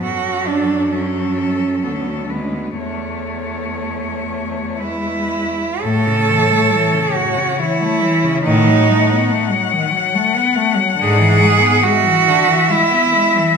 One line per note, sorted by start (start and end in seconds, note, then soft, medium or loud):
0.04 1.86 F#2 medium
0.04 0.88 F#3 medium
0.04 0.49 F#4 medium
0.04 0.88 A4 medium
0.47 0.94 D4 medium
0.92 1.82 F#3 soft
0.92 1.85 C#4 medium
0.92 1.81 A4 medium
1.82 2.79 D2 medium
1.82 2.29 F#3 soft
1.82 1.94 B3 medium
1.82 2.31 A4 medium
1.93 2.03 C#4 medium
2.01 2.12 B3 medium
2.10 2.18 C#4 soft
2.17 2.25 B3 soft
2.23 2.34 C#4 soft
2.29 2.78 G#3 soft
2.29 2.44 B3 soft
2.29 2.77 B4 soft
2.42 2.52 C#4 soft
2.50 2.76 B3 soft
2.76 5.57 E2 soft
2.76 4.75 A3 medium
2.76 4.80 A3 soft
2.76 4.81 C#5 soft
4.79 5.60 G#3 soft
4.79 5.83 E4 medium
4.79 5.60 B4 soft
5.80 6.08 A2 medium
5.80 7.16 A4 loud
5.80 8.39 C#5 medium
5.84 6.58 A2 medium
6.06 6.30 C#3 medium
6.29 6.53 E3 medium
6.52 6.74 A3 medium
6.72 6.94 E3 medium
6.93 7.16 C#3 medium
7.14 7.39 A2 medium
7.14 7.61 F#4 medium
7.37 7.60 C#3 medium
7.58 7.83 E3 medium
7.58 8.43 E4 medium
7.81 8.04 A3 medium
8.03 8.25 E3 medium
8.24 8.45 C#3 medium
8.43 9.16 A2 medium
8.43 8.68 D#3 medium
8.43 9.70 D#4 loud
8.43 11.87 F#5 medium
8.67 8.91 F#3 medium
8.90 9.13 A3 medium
9.11 9.32 B3 medium
9.31 9.52 A3 medium
9.51 9.73 F#3 medium
9.72 9.93 D#3 medium
9.91 10.16 F#3 medium
10.14 10.38 A3 medium
10.36 10.58 B3 medium
10.56 10.78 A3 medium
10.76 10.97 F#3 medium
10.97 11.20 D3 medium
11.01 11.72 G#2 medium
11.01 11.85 G#4 loud
11.18 11.42 E3 medium
11.41 11.62 G#3 medium
11.60 11.84 B3 medium
11.83 12.06 G#3 medium
11.83 12.74 F#4 loud
11.83 13.57 E5 medium
12.04 12.30 E3 medium
12.28 12.50 D3 medium
12.48 12.71 E3 medium
12.69 12.93 G#3 medium
12.69 13.57 E4 loud
12.91 13.16 B3 medium
13.14 13.38 G#3 medium
13.37 13.57 E3 medium